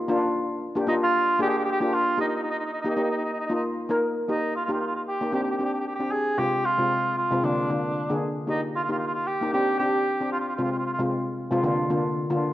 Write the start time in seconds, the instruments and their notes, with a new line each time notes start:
0.08 steel pan A#3 D4 F4
0.75 steel pan A#3 D4 G4
0.87 steel pan A#3 D4 F4, cor anglais D#4
1.03 cor anglais F4
1.39 steel pan A#3 D4 G#4, cor anglais G4
1.50 cor anglais G4
1.58 cor anglais G4
1.65 cor anglais G4
1.71 cor anglais G4
1.80 steel pan A#3 D4 F4, cor anglais G4
1.93 cor anglais F4
2.17 steel pan A#3 D#4 G4, cor anglais D#4
2.28 cor anglais D#4
2.36 cor anglais D#4
2.43 cor anglais D#4
2.50 cor anglais D#4
2.58 cor anglais D#4
2.65 cor anglais D#4
2.73 cor anglais D#4
2.81 steel pan A#3 D#4, cor anglais D#4
2.85 steel pan G4
2.89 cor anglais D#4
2.95 steel pan A#3 D#4 G4, cor anglais D#4
3.03 cor anglais D#4
3.10 cor anglais D#4
3.17 cor anglais D#4
3.24 cor anglais D#4
3.32 cor anglais D#4
3.40 cor anglais D#4
3.46 steel pan A#3 D#4 F4, cor anglais D#4
3.54 cor anglais D#4
3.89 steel pan A#3 D#4 A#4
4.28 steel pan A#3 D#4 G4, cor anglais D#4
4.56 cor anglais F4
4.65 steel pan A#3, cor anglais F4
4.69 steel pan D#4 G4, cor anglais F4
4.80 cor anglais F4
4.87 cor anglais F4
4.95 cor anglais F4
5.08 cor anglais G4
5.21 steel pan A#3 D#4 G4
5.32 steel pan C4 D4 G4, cor anglais G4
5.43 cor anglais G4
5.50 cor anglais G4
5.57 steel pan C4 D4 G4, cor anglais G4
5.65 cor anglais G4
5.73 cor anglais G4
5.80 cor anglais G4
5.87 cor anglais G4
5.95 cor anglais G4
6.00 steel pan C4 D4 G4
6.12 cor anglais G#4
6.38 steel pan C3 G#3 C4 F4, cor anglais G4
6.65 cor anglais F4
6.78 steel pan C3 G#3 C4 F4
7.17 cor anglais F4
7.31 steel pan C3 G#3 C4 F4
7.43 steel pan D3 A#3 D4 F4, cor anglais D4
7.70 steel pan D3 A#3 D4 F4
8.10 steel pan D3 A#3 D4 G#4
8.47 steel pan A#3 D#4 G4, cor anglais D#4
8.75 cor anglais F4
8.84 cor anglais F4
8.88 steel pan A#3 D#4 G4, cor anglais F4
8.98 cor anglais F4
9.07 cor anglais F4
9.14 cor anglais F4
9.27 cor anglais G4
9.41 steel pan A#3 D#4 G4
9.53 steel pan C4 D4 G4, cor anglais G4
9.79 steel pan C4 D4 G4, cor anglais G4
10.21 steel pan C4 D4 G4
10.32 cor anglais F4
10.40 cor anglais F4
10.48 cor anglais F4
10.55 steel pan C3 G#3 C4 F4, cor anglais F4
10.63 cor anglais F4
10.71 cor anglais F4
10.78 cor anglais F4
10.86 cor anglais F4
10.93 cor anglais F4
10.99 steel pan C3 G#3 C4 F4
11.51 steel pan C3 G#3 C4 F4
11.63 steel pan D3 A#3 D4 F4
11.90 steel pan D3 A#3 D4 F4
12.30 steel pan D3 A#3 D4 F4